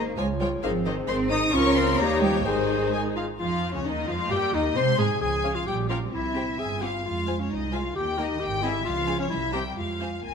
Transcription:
Already playing: G#1 A#3 D#4 C5
0.17 C#2 F3 G#3 F4 G#4 C#5 G#5
0.40 F3 G3 F4 G#4 C#5 G5
0.63 G#1 D#3 F3 C4 D#4 G#4 C5 F5
0.85 D#3 D#4 G#4 C5 D#5
1.08 G#1 D#3 C4 D#4 G#4 C5 C6
1.30 D#3 D#4 G#4 C5 D#6
1.53 C#2 F3 C#4 F4 A#4 C#5 C#6
1.76 C4 C6
1.98 D#2 G3 A#3 D#4 G4 C#5 A#5
2.22 F3 G3 G5
2.45 G#1 D#3 G#3 D#4 G#4 C5 G#5
2.93 G#4 G#5
3.16 F4 F5
3.38 F2 F3 F4 F5
3.73 C#2 C#3 C#4 C#5
3.84 D#2 D#3 G#3 D#4 D#5
4.08 F2 F3 F4 F5
4.30 G2 G3 A#3 G4 G5
4.53 D#2 D#3 D#4 D#5
4.75 C3 G#3 C4 C5 C6
4.98 G#2 G#3 G#4 G#5
5.21 C#2 F3 G#4 G#5
5.44 C#4 G#4 C#5 F5
5.54 F4 F5
5.66 A#1 G3 G4 G5
5.89 C#4 F4 A#4 C#5 F5 G5
6.12 C2 C4 E4 E5
6.35 C4 G4 C5 G5
6.59 G1 G#4 E5 G#5
6.81 C4 F4 G4 F5
7.04 F2 G#3 F4 F5
7.27 G#3 F4 C5 G#5
7.40 C#4 C#5
7.50 C2 D#4 D#5
7.72 G#3 F4 C5 F5 G#5
7.95 D#2 D#3 G4 G5
8.18 A#3 D#4 A#4 D#5 G5
8.40 G#1 G4 G5
8.63 C4 E4 G#4 D#5 E5 G#5
8.85 C#2 F3 F4 F5
9.07 C#4 G#4 F5 G#5
9.20 C#4 C#5
9.30 C2 G3 E4 E5
9.53 C4 G4 C5 G5 A#5
9.77 F2 G#3 F4 F5
10.00 C4 C5 F5 G#5
10.24 C2 A#3 G#5

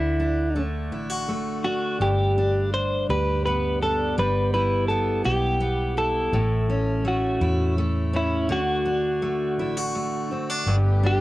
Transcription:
Already playing: D2 D3 E4
0.20 D4
0.56 A3
0.91 A1 E4
1.10 F#4
1.29 A3
1.64 D4 F#4
2.00 G1 G2 G4
2.38 D4
2.74 C5
3.09 D2 G4 B4
3.46 B3 B4
3.82 D4 A4
4.18 G1 G3 B4
4.54 E4 B4
4.88 B3 A4
5.24 B1 G4
5.60 B3
5.97 E4 A4
6.33 A1 A2
6.70 C#4
7.05 A3 F#4
7.41 E2 E4
7.78 A3
8.13 C#4 E4
8.49 D2 D3 F#4
8.85 D4
9.22 A3
9.57 A1 E4
9.77 F#4
9.95 A3
10.31 C4
10.50 D4
10.66 G1 G2 D3 G3 B3 G4
11.03 D4 G4

